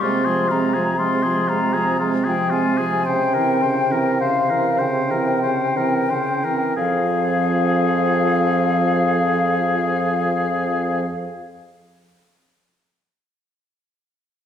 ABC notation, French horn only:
X:1
M:12/8
L:1/16
Q:3/8=31
K:Fm
V:1 name="French horn" clef=bass
A, F, A, F, A, F, A, F, A, F, A, F, D, =E, D, E, D, E, D, E, D, E, D, E, | F,24 |]